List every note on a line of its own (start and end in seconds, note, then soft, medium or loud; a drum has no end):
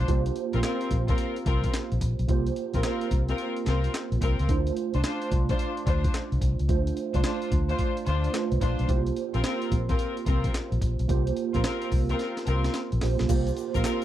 0.08 0.29 C2 loud
0.08 2.24 A#3 medium
0.08 2.25 F4 medium
0.08 2.25 G4 medium
0.08 2.25 C5 medium
0.08 kick loud
0.08 closed hi-hat medium
0.26 closed hi-hat medium
0.36 closed hi-hat medium
0.53 0.61 A#1 medium
0.53 0.62 C4 medium
0.53 0.63 F4 medium
0.53 0.63 A#4 medium
0.53 closed hi-hat medium
0.63 0.85 C4 medium
0.63 0.86 F4 medium
0.63 0.86 A#4 medium
0.63 snare loud
0.63 clap medium
0.63 closed hi-hat medium
0.81 closed hi-hat medium
0.91 1.11 A#1 loud
0.91 kick loud
0.91 closed hi-hat medium
1.08 1.26 C4 medium
1.08 1.26 F4 medium
1.08 1.26 A#4 medium
1.08 kick loud
1.08 closed hi-hat soft
1.18 closed hi-hat medium
1.36 closed hi-hat medium
1.46 1.66 C2 medium
1.46 1.68 C4 medium
1.46 1.68 F4 medium
1.46 1.68 A#4 medium
1.46 kick loud
1.46 closed hi-hat medium
1.64 kick loud
1.64 closed hi-hat medium
1.74 snare loud
1.74 clap medium
1.74 closed hi-hat medium
1.92 1.99 A#1 medium
1.92 closed hi-hat soft
2.01 2.14 A#1 loud
2.01 kick medium
2.01 closed hi-hat medium
2.19 2.26 B1 medium
2.19 closed hi-hat soft
2.28 2.49 C2 loud
2.28 4.44 A#3 medium
2.28 4.45 F4 medium
2.28 4.45 G4 medium
2.28 4.46 C5 medium
2.28 kick loud
2.28 closed hi-hat medium
2.46 closed hi-hat medium
2.56 closed hi-hat medium
2.74 2.81 A#1 medium
2.74 2.82 C4 medium
2.74 2.83 F4 medium
2.74 2.83 A#4 medium
2.74 kick loud
2.74 closed hi-hat medium
2.83 3.06 C4 medium
2.83 3.06 F4 medium
2.83 3.06 A#4 medium
2.83 snare loud
2.83 clap medium
2.83 closed hi-hat medium
3.01 closed hi-hat medium
3.11 3.31 C2 medium
3.11 kick loud
3.11 closed hi-hat medium
3.29 3.46 C4 medium
3.29 3.47 F4 medium
3.29 3.47 A#4 medium
3.29 closed hi-hat medium
3.38 closed hi-hat medium
3.57 closed hi-hat medium
3.66 3.87 C2 medium
3.66 3.88 C4 medium
3.66 3.88 F4 medium
3.66 3.88 A#4 medium
3.66 snare medium
3.66 closed hi-hat medium
3.84 closed hi-hat medium
3.94 snare loud
3.94 clap medium
3.94 closed hi-hat medium
4.12 4.19 A#1 medium
4.12 closed hi-hat soft
4.21 4.34 C2 medium
4.21 4.43 C4 medium
4.21 4.43 F4 medium
4.21 4.44 A#4 medium
4.21 kick medium
4.21 closed hi-hat medium
4.39 4.47 C#2 loud
4.39 closed hi-hat medium
4.48 4.69 D2 loud
4.48 6.65 A3 medium
4.48 6.65 D4 medium
4.48 4.58 E4 medium
4.48 6.66 C5 medium
4.48 kick loud
4.48 closed hi-hat medium
4.56 6.68 F4 medium
4.67 closed hi-hat medium
4.77 closed hi-hat medium
4.94 5.01 C2 medium
4.94 5.03 D4 medium
4.94 5.03 F4 medium
4.94 5.03 C5 medium
4.94 closed hi-hat medium
5.04 5.26 D4 medium
5.04 5.26 F4 medium
5.04 5.26 C5 medium
5.04 snare loud
5.04 clap medium
5.04 closed hi-hat medium
5.22 closed hi-hat medium
5.32 5.52 C2 medium
5.32 kick medium
5.32 closed hi-hat medium
5.49 5.67 D4 medium
5.49 5.67 F4 medium
5.49 5.67 C5 medium
5.49 kick loud
5.49 closed hi-hat medium
5.59 closed hi-hat medium
5.77 closed hi-hat medium
5.86 6.06 D2 medium
5.86 6.08 D4 medium
5.86 6.08 F4 medium
5.86 6.09 C5 medium
5.86 kick medium
5.86 closed hi-hat medium
6.04 kick medium
6.04 closed hi-hat medium
6.14 snare loud
6.14 clap medium
6.14 closed hi-hat medium
6.32 6.39 C2 medium
6.32 closed hi-hat soft
6.41 6.55 C2 medium
6.41 kick medium
6.41 closed hi-hat medium
6.59 6.67 C#2 medium
6.59 closed hi-hat soft
6.68 6.89 D2 loud
6.68 8.30 A3 medium
6.68 8.31 D4 medium
6.68 8.31 F4 medium
6.68 8.31 C5 medium
6.68 kick loud
6.68 closed hi-hat medium
6.87 closed hi-hat medium
6.97 closed hi-hat medium
7.14 7.22 C2 medium
7.14 7.22 D4 medium
7.14 7.23 F4 medium
7.14 7.23 C5 medium
7.14 kick medium
7.14 closed hi-hat medium
7.24 7.46 D4 medium
7.24 7.46 F4 medium
7.24 7.46 C5 medium
7.24 snare loud
7.24 clap medium
7.24 closed hi-hat medium
7.42 closed hi-hat medium
7.52 7.72 D2 medium
7.52 kick loud
7.52 closed hi-hat medium
7.69 7.87 D4 medium
7.69 7.87 F4 medium
7.69 7.87 C5 medium
7.69 closed hi-hat soft
7.79 kick medium
7.79 closed hi-hat medium
7.97 closed hi-hat medium
8.06 8.27 D2 medium
8.06 8.28 D4 medium
8.06 8.28 F4 medium
8.06 8.29 C5 medium
8.06 closed hi-hat medium
8.24 closed hi-hat medium
8.34 8.89 A3 medium
8.34 8.89 D4 soft
8.34 8.89 F4 medium
8.34 8.43 B4 soft
8.34 snare loud
8.34 clap medium
8.34 closed hi-hat medium
8.41 8.89 C5 medium
8.52 8.59 C2 medium
8.52 closed hi-hat medium
8.61 8.74 A#1 medium
8.61 8.83 D4 medium
8.61 8.84 F4 medium
8.61 8.84 C5 medium
8.61 kick medium
8.61 closed hi-hat medium
8.79 8.87 B1 medium
8.79 closed hi-hat soft
8.88 11.05 A#3 medium
8.88 8.97 E4 medium
8.88 11.05 G4 medium
8.88 11.06 C5 medium
8.88 kick loud
8.88 closed hi-hat medium
8.95 11.07 F4 medium
9.07 closed hi-hat medium
9.16 closed hi-hat medium
9.34 9.42 A#1 medium
9.34 9.43 C4 medium
9.34 9.43 F4 medium
9.34 9.43 A#4 medium
9.34 closed hi-hat medium
9.44 9.66 C4 medium
9.44 9.66 F4 medium
9.44 9.66 A#4 medium
9.44 snare loud
9.44 clap medium
9.44 closed hi-hat medium
9.62 closed hi-hat medium
9.72 9.92 A#1 medium
9.72 kick loud
9.72 closed hi-hat medium
9.89 10.07 C4 medium
9.89 10.07 F4 medium
9.89 10.07 A#4 medium
9.89 kick loud
9.89 closed hi-hat soft
9.99 closed hi-hat medium
10.17 closed hi-hat medium
10.26 10.47 C2 loud
10.26 10.48 C4 medium
10.26 10.49 F4 medium
10.26 10.49 A#4 medium
10.26 kick loud
10.26 closed hi-hat medium
10.44 kick medium
10.44 closed hi-hat medium
10.54 snare loud
10.54 clap medium
10.54 closed hi-hat medium
10.72 10.79 A#1 medium
10.72 closed hi-hat soft
10.82 kick medium
10.82 closed hi-hat medium
10.99 11.07 B1 medium
10.99 closed hi-hat soft
11.08 11.29 C2 loud
11.08 12.97 A#3 medium
11.08 12.98 F4 medium
11.08 12.98 G4 medium
11.08 12.99 C5 medium
11.08 kick loud
11.08 closed hi-hat medium
11.27 closed hi-hat medium
11.37 closed hi-hat medium
11.54 11.62 A#1 loud
11.54 11.63 C4 medium
11.54 11.63 F4 medium
11.54 11.63 A#4 medium
11.54 kick medium
11.54 closed hi-hat medium
11.64 11.86 C4 medium
11.64 11.86 F4 medium
11.64 11.86 A#4 medium
11.64 snare loud
11.64 clap medium
11.64 closed hi-hat medium
11.82 closed hi-hat medium
11.92 12.12 C2 loud
11.92 kick medium
11.92 open hi-hat medium
12.09 12.27 C4 medium
12.09 12.27 F4 medium
12.09 12.27 A#4 medium
12.09 closed hi-hat medium
12.19 snare medium
12.19 closed hi-hat medium
12.37 snare medium
12.37 closed hi-hat medium
12.46 12.67 C2 medium
12.46 12.69 C4 medium
12.46 12.69 F4 medium
12.46 12.69 A#4 medium
12.46 closed hi-hat medium
12.64 snare medium
12.64 closed hi-hat medium
12.74 snare medium
12.74 closed hi-hat medium
12.92 13.00 A#1 medium
12.92 closed hi-hat medium
13.01 13.15 A#1 medium
13.01 13.27 A#3 medium
13.01 13.28 F4 medium
13.01 13.29 G4 soft
13.01 13.30 C5 medium
13.01 snare medium
13.01 open hi-hat medium
13.19 13.27 B1 medium
13.19 snare medium
13.19 closed hi-hat soft
13.28 13.49 C2 medium
13.28 14.04 A#3 medium
13.28 14.04 F4 medium
13.28 14.04 G4 medium
13.28 14.04 C5 medium
13.28 kick loud
13.28 closed hi-hat medium
13.28 crash loud
13.28 shaker medium
13.47 closed hi-hat medium
13.47 shaker soft
13.57 closed hi-hat medium
13.57 shaker soft
13.74 13.82 A#1 medium
13.74 13.83 C4 medium
13.74 13.83 F4 medium
13.74 13.84 A#4 medium
13.74 kick loud
13.74 closed hi-hat medium
13.74 shaker soft
13.84 14.04 C4 medium
13.84 14.04 F4 medium
13.84 14.04 A#4 medium
13.84 snare loud
13.84 clap medium
13.84 closed hi-hat medium
13.84 shaker medium